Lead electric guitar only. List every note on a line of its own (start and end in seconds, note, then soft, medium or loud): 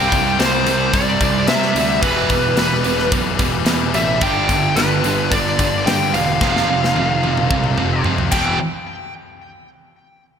0.00 0.40 G5 loud
0.39 0.95 C5 medium
0.94 1.48 D5 medium
1.48 1.99 E5 medium
2.02 2.58 B4 medium
2.59 3.09 B4 medium
3.95 4.23 E5 medium
4.23 4.78 G5 loud
4.76 5.32 B4 loud
5.32 5.88 D5 medium
5.86 6.14 G5 medium
6.14 8.01 F5 medium
8.32 8.58 G5 medium